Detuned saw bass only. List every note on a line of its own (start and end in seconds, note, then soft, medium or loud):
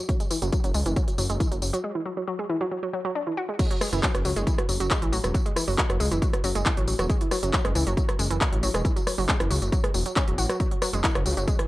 0.42 0.50 F#1 loud
0.64 0.72 F#1 medium
0.74 0.83 C#2 loud
0.86 0.94 F#1 medium
1.18 1.27 F#1 loud
1.30 1.38 F#1 medium
1.52 1.60 F#1 medium
1.62 1.71 F#1 medium
3.93 4.01 F#1 loud
4.14 4.23 F#1 medium
4.25 4.34 C#2 loud
4.36 4.45 F#1 medium
4.69 4.78 F#1 loud
4.80 4.88 F#1 medium
5.02 5.19 A1 medium
5.24 5.32 E1 medium
5.68 5.76 F#1 loud
5.90 5.98 F#1 medium
6.00 6.09 C#2 loud
6.12 6.20 F#1 medium
6.44 6.53 F#1 loud
6.55 6.63 F#1 medium
6.77 6.94 A1 medium
6.99 7.07 E1 medium
7.43 7.51 F#1 loud
7.65 7.73 F#1 medium
7.75 7.84 C#2 loud
7.87 7.95 F#1 medium
8.19 8.28 F#1 loud
8.30 8.39 F#1 medium
8.52 8.69 A1 medium
8.74 8.82 E1 medium
9.18 9.26 F#1 loud
9.40 9.48 F#1 medium
9.51 9.59 C#2 loud
9.62 9.70 F#1 medium
9.94 10.03 E1 medium
10.28 10.36 E1 medium
10.38 10.47 A1 medium
10.93 11.01 F#1 loud
11.15 11.23 F#1 medium
11.26 11.35 C#2 loud
11.37 11.45 F#1 medium